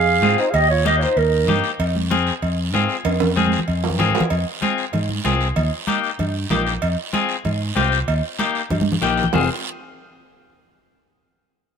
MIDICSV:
0, 0, Header, 1, 6, 480
1, 0, Start_track
1, 0, Key_signature, -4, "minor"
1, 0, Tempo, 313972
1, 826, Time_signature, 4, 2, 24, 8
1, 18003, End_track
2, 0, Start_track
2, 0, Title_t, "Clarinet"
2, 0, Program_c, 0, 71
2, 0, Note_on_c, 0, 77, 104
2, 541, Note_off_c, 0, 77, 0
2, 596, Note_on_c, 0, 72, 89
2, 767, Note_on_c, 0, 77, 70
2, 790, Note_off_c, 0, 72, 0
2, 836, Note_on_c, 0, 75, 99
2, 859, Note_off_c, 0, 77, 0
2, 1066, Note_off_c, 0, 75, 0
2, 1076, Note_on_c, 0, 73, 83
2, 1294, Note_off_c, 0, 73, 0
2, 1327, Note_on_c, 0, 75, 85
2, 1484, Note_off_c, 0, 75, 0
2, 1502, Note_on_c, 0, 73, 70
2, 1565, Note_on_c, 0, 72, 87
2, 1588, Note_off_c, 0, 73, 0
2, 1806, Note_on_c, 0, 70, 78
2, 1829, Note_off_c, 0, 72, 0
2, 2517, Note_off_c, 0, 70, 0
2, 18003, End_track
3, 0, Start_track
3, 0, Title_t, "Clean electric guitar"
3, 0, Program_c, 1, 27
3, 340, Note_on_c, 1, 60, 74
3, 349, Note_on_c, 1, 65, 61
3, 353, Note_on_c, 1, 68, 78
3, 679, Note_off_c, 1, 60, 0
3, 680, Note_off_c, 1, 65, 0
3, 685, Note_off_c, 1, 68, 0
3, 1299, Note_on_c, 1, 58, 71
3, 1303, Note_on_c, 1, 63, 66
3, 1316, Note_on_c, 1, 67, 73
3, 1638, Note_off_c, 1, 58, 0
3, 1643, Note_off_c, 1, 63, 0
3, 1643, Note_off_c, 1, 67, 0
3, 2259, Note_on_c, 1, 58, 74
3, 2267, Note_on_c, 1, 63, 67
3, 2278, Note_on_c, 1, 67, 86
3, 2599, Note_off_c, 1, 58, 0
3, 2603, Note_off_c, 1, 63, 0
3, 2608, Note_off_c, 1, 67, 0
3, 3219, Note_on_c, 1, 60, 85
3, 3224, Note_on_c, 1, 65, 73
3, 3234, Note_on_c, 1, 68, 88
3, 3560, Note_off_c, 1, 60, 0
3, 3563, Note_off_c, 1, 65, 0
3, 3564, Note_off_c, 1, 68, 0
3, 4183, Note_on_c, 1, 60, 90
3, 4190, Note_on_c, 1, 65, 86
3, 4198, Note_on_c, 1, 68, 84
3, 4522, Note_off_c, 1, 60, 0
3, 4526, Note_off_c, 1, 65, 0
3, 4527, Note_off_c, 1, 68, 0
3, 5138, Note_on_c, 1, 60, 86
3, 5151, Note_on_c, 1, 68, 83
3, 5154, Note_on_c, 1, 65, 69
3, 5481, Note_off_c, 1, 60, 0
3, 5484, Note_off_c, 1, 65, 0
3, 5486, Note_off_c, 1, 68, 0
3, 6096, Note_on_c, 1, 60, 88
3, 6103, Note_on_c, 1, 65, 83
3, 6110, Note_on_c, 1, 68, 100
3, 6439, Note_off_c, 1, 60, 0
3, 6442, Note_off_c, 1, 65, 0
3, 6446, Note_off_c, 1, 68, 0
3, 7062, Note_on_c, 1, 60, 80
3, 7068, Note_on_c, 1, 65, 74
3, 7079, Note_on_c, 1, 68, 70
3, 7402, Note_off_c, 1, 60, 0
3, 7406, Note_off_c, 1, 65, 0
3, 7408, Note_off_c, 1, 68, 0
3, 8017, Note_on_c, 1, 60, 80
3, 8022, Note_on_c, 1, 65, 80
3, 8033, Note_on_c, 1, 68, 81
3, 8360, Note_off_c, 1, 60, 0
3, 8364, Note_off_c, 1, 65, 0
3, 8366, Note_off_c, 1, 68, 0
3, 8976, Note_on_c, 1, 58, 77
3, 8982, Note_on_c, 1, 63, 78
3, 8990, Note_on_c, 1, 67, 80
3, 9319, Note_off_c, 1, 58, 0
3, 9323, Note_off_c, 1, 63, 0
3, 9327, Note_off_c, 1, 67, 0
3, 9942, Note_on_c, 1, 58, 81
3, 9948, Note_on_c, 1, 63, 76
3, 9958, Note_on_c, 1, 67, 80
3, 10283, Note_off_c, 1, 58, 0
3, 10286, Note_off_c, 1, 63, 0
3, 10289, Note_off_c, 1, 67, 0
3, 10901, Note_on_c, 1, 60, 74
3, 10907, Note_on_c, 1, 65, 77
3, 10918, Note_on_c, 1, 68, 82
3, 11242, Note_off_c, 1, 60, 0
3, 11247, Note_off_c, 1, 65, 0
3, 11248, Note_off_c, 1, 68, 0
3, 11855, Note_on_c, 1, 60, 88
3, 11868, Note_on_c, 1, 65, 67
3, 11871, Note_on_c, 1, 67, 96
3, 12201, Note_off_c, 1, 60, 0
3, 12204, Note_off_c, 1, 65, 0
3, 12207, Note_off_c, 1, 67, 0
3, 12824, Note_on_c, 1, 58, 91
3, 12834, Note_on_c, 1, 63, 66
3, 12836, Note_on_c, 1, 67, 86
3, 13165, Note_off_c, 1, 63, 0
3, 13166, Note_off_c, 1, 58, 0
3, 13170, Note_off_c, 1, 67, 0
3, 13783, Note_on_c, 1, 58, 85
3, 13795, Note_on_c, 1, 63, 69
3, 13796, Note_on_c, 1, 67, 97
3, 13804, Note_on_c, 1, 79, 65
3, 14125, Note_off_c, 1, 58, 0
3, 14128, Note_off_c, 1, 63, 0
3, 14130, Note_off_c, 1, 67, 0
3, 14239, Note_off_c, 1, 79, 0
3, 14277, Note_on_c, 1, 60, 79
3, 14284, Note_on_c, 1, 65, 72
3, 14293, Note_on_c, 1, 68, 81
3, 14499, Note_off_c, 1, 60, 0
3, 14500, Note_off_c, 1, 65, 0
3, 14501, Note_off_c, 1, 68, 0
3, 18003, End_track
4, 0, Start_track
4, 0, Title_t, "Muted trumpet"
4, 0, Program_c, 2, 59
4, 0, Note_on_c, 2, 68, 93
4, 540, Note_off_c, 2, 68, 0
4, 599, Note_on_c, 2, 63, 81
4, 768, Note_on_c, 2, 68, 65
4, 791, Note_off_c, 2, 63, 0
4, 836, Note_on_c, 2, 67, 83
4, 859, Note_off_c, 2, 68, 0
4, 1071, Note_off_c, 2, 67, 0
4, 1081, Note_on_c, 2, 65, 73
4, 1297, Note_off_c, 2, 65, 0
4, 1320, Note_on_c, 2, 67, 68
4, 1481, Note_off_c, 2, 67, 0
4, 1500, Note_on_c, 2, 65, 54
4, 1542, Note_on_c, 2, 63, 73
4, 1565, Note_off_c, 2, 65, 0
4, 1788, Note_off_c, 2, 63, 0
4, 1788, Note_on_c, 2, 63, 69
4, 2508, Note_off_c, 2, 63, 0
4, 18003, End_track
5, 0, Start_track
5, 0, Title_t, "Fingered electric bass"
5, 0, Program_c, 3, 33
5, 0, Note_on_c, 3, 41, 91
5, 343, Note_off_c, 3, 41, 0
5, 343, Note_on_c, 3, 44, 98
5, 536, Note_off_c, 3, 44, 0
5, 821, Note_on_c, 3, 39, 103
5, 1591, Note_off_c, 3, 39, 0
5, 1783, Note_on_c, 3, 39, 92
5, 2263, Note_off_c, 3, 39, 0
5, 2263, Note_on_c, 3, 43, 92
5, 2456, Note_off_c, 3, 43, 0
5, 2745, Note_on_c, 3, 41, 102
5, 3514, Note_off_c, 3, 41, 0
5, 3707, Note_on_c, 3, 41, 90
5, 4185, Note_off_c, 3, 41, 0
5, 4185, Note_on_c, 3, 44, 97
5, 4378, Note_off_c, 3, 44, 0
5, 4665, Note_on_c, 3, 41, 104
5, 5435, Note_off_c, 3, 41, 0
5, 5629, Note_on_c, 3, 41, 97
5, 6106, Note_off_c, 3, 41, 0
5, 6106, Note_on_c, 3, 44, 95
5, 6299, Note_off_c, 3, 44, 0
5, 6586, Note_on_c, 3, 41, 98
5, 6779, Note_off_c, 3, 41, 0
5, 7547, Note_on_c, 3, 44, 91
5, 7932, Note_off_c, 3, 44, 0
5, 8029, Note_on_c, 3, 36, 91
5, 8414, Note_off_c, 3, 36, 0
5, 8508, Note_on_c, 3, 39, 111
5, 8701, Note_off_c, 3, 39, 0
5, 9471, Note_on_c, 3, 43, 96
5, 9855, Note_off_c, 3, 43, 0
5, 9952, Note_on_c, 3, 34, 91
5, 10336, Note_off_c, 3, 34, 0
5, 10437, Note_on_c, 3, 41, 107
5, 10627, Note_off_c, 3, 41, 0
5, 11394, Note_on_c, 3, 44, 95
5, 11777, Note_off_c, 3, 44, 0
5, 11870, Note_on_c, 3, 36, 88
5, 12255, Note_off_c, 3, 36, 0
5, 12350, Note_on_c, 3, 39, 103
5, 12543, Note_off_c, 3, 39, 0
5, 13313, Note_on_c, 3, 43, 99
5, 13696, Note_off_c, 3, 43, 0
5, 13789, Note_on_c, 3, 34, 89
5, 14174, Note_off_c, 3, 34, 0
5, 14265, Note_on_c, 3, 29, 95
5, 14491, Note_off_c, 3, 29, 0
5, 18003, End_track
6, 0, Start_track
6, 0, Title_t, "Drums"
6, 348, Note_on_c, 9, 63, 81
6, 349, Note_on_c, 9, 66, 66
6, 349, Note_on_c, 9, 73, 73
6, 501, Note_off_c, 9, 63, 0
6, 501, Note_off_c, 9, 66, 0
6, 502, Note_off_c, 9, 73, 0
6, 585, Note_on_c, 9, 73, 68
6, 738, Note_off_c, 9, 73, 0
6, 822, Note_on_c, 9, 56, 108
6, 827, Note_on_c, 9, 74, 66
6, 833, Note_on_c, 9, 63, 34
6, 975, Note_off_c, 9, 56, 0
6, 980, Note_off_c, 9, 74, 0
6, 986, Note_off_c, 9, 63, 0
6, 1311, Note_on_c, 9, 63, 92
6, 1311, Note_on_c, 9, 73, 70
6, 1464, Note_off_c, 9, 63, 0
6, 1464, Note_off_c, 9, 73, 0
6, 1551, Note_on_c, 9, 73, 71
6, 1704, Note_off_c, 9, 73, 0
6, 1788, Note_on_c, 9, 74, 78
6, 1789, Note_on_c, 9, 56, 80
6, 1798, Note_on_c, 9, 63, 34
6, 1941, Note_off_c, 9, 74, 0
6, 1942, Note_off_c, 9, 56, 0
6, 1951, Note_off_c, 9, 63, 0
6, 2262, Note_on_c, 9, 73, 67
6, 2269, Note_on_c, 9, 63, 85
6, 2269, Note_on_c, 9, 64, 82
6, 2415, Note_off_c, 9, 73, 0
6, 2421, Note_off_c, 9, 63, 0
6, 2421, Note_off_c, 9, 64, 0
6, 2504, Note_on_c, 9, 73, 68
6, 2657, Note_off_c, 9, 73, 0
6, 2745, Note_on_c, 9, 74, 70
6, 2748, Note_on_c, 9, 56, 105
6, 2751, Note_on_c, 9, 63, 33
6, 2898, Note_off_c, 9, 74, 0
6, 2900, Note_off_c, 9, 56, 0
6, 2904, Note_off_c, 9, 63, 0
6, 2994, Note_on_c, 9, 63, 73
6, 3147, Note_off_c, 9, 63, 0
6, 3229, Note_on_c, 9, 73, 70
6, 3231, Note_on_c, 9, 63, 93
6, 3382, Note_off_c, 9, 73, 0
6, 3384, Note_off_c, 9, 63, 0
6, 3468, Note_on_c, 9, 73, 67
6, 3621, Note_off_c, 9, 73, 0
6, 3705, Note_on_c, 9, 74, 72
6, 3707, Note_on_c, 9, 56, 87
6, 3715, Note_on_c, 9, 63, 34
6, 3858, Note_off_c, 9, 74, 0
6, 3860, Note_off_c, 9, 56, 0
6, 3868, Note_off_c, 9, 63, 0
6, 4185, Note_on_c, 9, 73, 73
6, 4188, Note_on_c, 9, 66, 65
6, 4197, Note_on_c, 9, 63, 79
6, 4338, Note_off_c, 9, 73, 0
6, 4340, Note_off_c, 9, 66, 0
6, 4350, Note_off_c, 9, 63, 0
6, 4420, Note_on_c, 9, 73, 66
6, 4573, Note_off_c, 9, 73, 0
6, 4660, Note_on_c, 9, 56, 102
6, 4660, Note_on_c, 9, 65, 76
6, 4662, Note_on_c, 9, 74, 66
6, 4678, Note_on_c, 9, 63, 35
6, 4813, Note_off_c, 9, 56, 0
6, 4813, Note_off_c, 9, 65, 0
6, 4814, Note_off_c, 9, 74, 0
6, 4831, Note_off_c, 9, 63, 0
6, 4896, Note_on_c, 9, 65, 88
6, 4915, Note_on_c, 9, 64, 70
6, 5049, Note_off_c, 9, 65, 0
6, 5068, Note_off_c, 9, 64, 0
6, 5144, Note_on_c, 9, 73, 69
6, 5156, Note_on_c, 9, 63, 83
6, 5297, Note_off_c, 9, 73, 0
6, 5309, Note_off_c, 9, 63, 0
6, 5313, Note_on_c, 9, 63, 71
6, 5382, Note_on_c, 9, 73, 69
6, 5466, Note_off_c, 9, 63, 0
6, 5481, Note_on_c, 9, 64, 80
6, 5535, Note_off_c, 9, 73, 0
6, 5621, Note_on_c, 9, 56, 79
6, 5622, Note_on_c, 9, 74, 80
6, 5634, Note_off_c, 9, 64, 0
6, 5774, Note_off_c, 9, 56, 0
6, 5775, Note_off_c, 9, 74, 0
6, 5866, Note_on_c, 9, 66, 92
6, 5955, Note_on_c, 9, 64, 67
6, 6019, Note_off_c, 9, 66, 0
6, 6103, Note_on_c, 9, 66, 78
6, 6108, Note_off_c, 9, 64, 0
6, 6108, Note_on_c, 9, 73, 71
6, 6112, Note_on_c, 9, 64, 88
6, 6256, Note_off_c, 9, 66, 0
6, 6261, Note_off_c, 9, 73, 0
6, 6265, Note_off_c, 9, 64, 0
6, 6272, Note_on_c, 9, 64, 68
6, 6343, Note_on_c, 9, 66, 100
6, 6351, Note_on_c, 9, 73, 66
6, 6425, Note_off_c, 9, 64, 0
6, 6427, Note_on_c, 9, 64, 100
6, 6496, Note_off_c, 9, 66, 0
6, 6504, Note_off_c, 9, 73, 0
6, 6578, Note_on_c, 9, 56, 100
6, 6580, Note_off_c, 9, 64, 0
6, 6585, Note_on_c, 9, 74, 67
6, 6731, Note_off_c, 9, 56, 0
6, 6738, Note_off_c, 9, 74, 0
6, 7064, Note_on_c, 9, 56, 70
6, 7067, Note_on_c, 9, 63, 85
6, 7069, Note_on_c, 9, 73, 70
6, 7217, Note_off_c, 9, 56, 0
6, 7220, Note_off_c, 9, 63, 0
6, 7222, Note_off_c, 9, 73, 0
6, 7310, Note_on_c, 9, 73, 61
6, 7463, Note_off_c, 9, 73, 0
6, 7537, Note_on_c, 9, 56, 83
6, 7544, Note_on_c, 9, 74, 79
6, 7549, Note_on_c, 9, 64, 84
6, 7690, Note_off_c, 9, 56, 0
6, 7697, Note_off_c, 9, 74, 0
6, 7702, Note_off_c, 9, 64, 0
6, 7784, Note_on_c, 9, 63, 64
6, 7937, Note_off_c, 9, 63, 0
6, 8020, Note_on_c, 9, 56, 66
6, 8020, Note_on_c, 9, 66, 68
6, 8026, Note_on_c, 9, 63, 80
6, 8029, Note_on_c, 9, 73, 72
6, 8173, Note_off_c, 9, 56, 0
6, 8173, Note_off_c, 9, 66, 0
6, 8178, Note_off_c, 9, 63, 0
6, 8182, Note_off_c, 9, 73, 0
6, 8265, Note_on_c, 9, 73, 62
6, 8418, Note_off_c, 9, 73, 0
6, 8501, Note_on_c, 9, 64, 64
6, 8503, Note_on_c, 9, 56, 101
6, 8513, Note_on_c, 9, 74, 69
6, 8654, Note_off_c, 9, 64, 0
6, 8656, Note_off_c, 9, 56, 0
6, 8666, Note_off_c, 9, 74, 0
6, 8979, Note_on_c, 9, 63, 86
6, 8982, Note_on_c, 9, 56, 74
6, 8991, Note_on_c, 9, 73, 70
6, 9132, Note_off_c, 9, 63, 0
6, 9135, Note_off_c, 9, 56, 0
6, 9144, Note_off_c, 9, 73, 0
6, 9227, Note_on_c, 9, 73, 64
6, 9380, Note_off_c, 9, 73, 0
6, 9464, Note_on_c, 9, 74, 76
6, 9465, Note_on_c, 9, 64, 81
6, 9473, Note_on_c, 9, 56, 83
6, 9617, Note_off_c, 9, 74, 0
6, 9618, Note_off_c, 9, 64, 0
6, 9626, Note_off_c, 9, 56, 0
6, 9942, Note_on_c, 9, 63, 84
6, 9942, Note_on_c, 9, 64, 65
6, 9952, Note_on_c, 9, 56, 66
6, 9952, Note_on_c, 9, 66, 71
6, 9954, Note_on_c, 9, 73, 71
6, 10095, Note_off_c, 9, 63, 0
6, 10095, Note_off_c, 9, 64, 0
6, 10105, Note_off_c, 9, 56, 0
6, 10105, Note_off_c, 9, 66, 0
6, 10106, Note_off_c, 9, 73, 0
6, 10192, Note_on_c, 9, 73, 69
6, 10345, Note_off_c, 9, 73, 0
6, 10425, Note_on_c, 9, 56, 107
6, 10433, Note_on_c, 9, 74, 69
6, 10578, Note_off_c, 9, 56, 0
6, 10586, Note_off_c, 9, 74, 0
6, 10905, Note_on_c, 9, 63, 88
6, 10909, Note_on_c, 9, 73, 70
6, 10910, Note_on_c, 9, 56, 78
6, 11058, Note_off_c, 9, 63, 0
6, 11062, Note_off_c, 9, 73, 0
6, 11063, Note_off_c, 9, 56, 0
6, 11142, Note_on_c, 9, 73, 67
6, 11295, Note_off_c, 9, 73, 0
6, 11385, Note_on_c, 9, 74, 71
6, 11388, Note_on_c, 9, 64, 81
6, 11392, Note_on_c, 9, 56, 83
6, 11538, Note_off_c, 9, 74, 0
6, 11541, Note_off_c, 9, 64, 0
6, 11545, Note_off_c, 9, 56, 0
6, 11870, Note_on_c, 9, 63, 79
6, 11873, Note_on_c, 9, 56, 69
6, 11873, Note_on_c, 9, 66, 72
6, 11874, Note_on_c, 9, 73, 72
6, 12023, Note_off_c, 9, 63, 0
6, 12026, Note_off_c, 9, 56, 0
6, 12026, Note_off_c, 9, 66, 0
6, 12027, Note_off_c, 9, 73, 0
6, 12112, Note_on_c, 9, 73, 72
6, 12265, Note_off_c, 9, 73, 0
6, 12351, Note_on_c, 9, 56, 110
6, 12357, Note_on_c, 9, 74, 68
6, 12504, Note_off_c, 9, 56, 0
6, 12510, Note_off_c, 9, 74, 0
6, 12827, Note_on_c, 9, 63, 86
6, 12834, Note_on_c, 9, 73, 73
6, 12835, Note_on_c, 9, 56, 78
6, 12980, Note_off_c, 9, 63, 0
6, 12987, Note_off_c, 9, 73, 0
6, 12988, Note_off_c, 9, 56, 0
6, 13075, Note_on_c, 9, 73, 67
6, 13228, Note_off_c, 9, 73, 0
6, 13307, Note_on_c, 9, 64, 106
6, 13310, Note_on_c, 9, 74, 80
6, 13318, Note_on_c, 9, 56, 83
6, 13460, Note_off_c, 9, 64, 0
6, 13462, Note_off_c, 9, 74, 0
6, 13471, Note_off_c, 9, 56, 0
6, 13472, Note_on_c, 9, 63, 101
6, 13625, Note_off_c, 9, 63, 0
6, 13635, Note_on_c, 9, 64, 91
6, 13788, Note_off_c, 9, 64, 0
6, 13791, Note_on_c, 9, 56, 66
6, 13791, Note_on_c, 9, 66, 73
6, 13799, Note_on_c, 9, 73, 75
6, 13944, Note_off_c, 9, 56, 0
6, 13944, Note_off_c, 9, 66, 0
6, 13952, Note_off_c, 9, 73, 0
6, 14027, Note_on_c, 9, 73, 69
6, 14112, Note_on_c, 9, 64, 70
6, 14180, Note_off_c, 9, 73, 0
6, 14262, Note_on_c, 9, 66, 102
6, 14264, Note_off_c, 9, 64, 0
6, 14273, Note_on_c, 9, 74, 91
6, 14274, Note_on_c, 9, 64, 96
6, 14414, Note_off_c, 9, 66, 0
6, 14426, Note_off_c, 9, 74, 0
6, 14427, Note_off_c, 9, 64, 0
6, 18003, End_track
0, 0, End_of_file